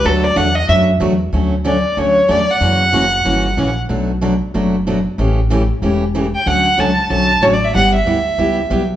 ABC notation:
X:1
M:4/4
L:1/8
Q:"Swing" 1/4=187
K:D
V:1 name="Fiddle"
A d f _e =e z3 | z2 d2 c2 d f- | f6- f z | z8 |
z6 z g | f2 a2 a2 (3c d e | f e6 z |]
V:2 name="Steel-string acoustic guitar"
[D,F,A,DF] z [D,F,A,DF] z [D,F,A,DF] z [D,F,A,DF] z | [D,F,A,CF] z [D,F,A,CF] z [D,F,A,CF] z [D,F,A,CF] z | [C,E,^A,CF] z [C,E,A,CF] z [C,E,A,CF] z [C,E,A,CF] z | [B,,F,A,DF] z [B,,F,A,DF] z [B,,F,A,DF] z [B,,F,A,DF] z |
[C,E,A,CG] z [C,E,A,CG] z [C,E,A,CG] z [C,E,A,CG] z | [D,F,A,CF] z [D,F,A,CF] z [D,F,A,CF] z [D,F,A,CF] z | [G,B,EG] z [G,B,EG] z [G,B,EG] z [G,B,EG] z |]
V:3 name="Upright bass" clef=bass
D,,2 E,,2 F,,2 E,,2 | D,,4 D,,2 E,,2 | F,,2 F,,,2 G,,,2 ^A,,,2 | B,,,4 F,,,4 |
A,,,4 E,,,4 | D,,2 C,,2 B,,,2 A,,,2 | G,,,2 D,,2 C,,2 B,,,2 |]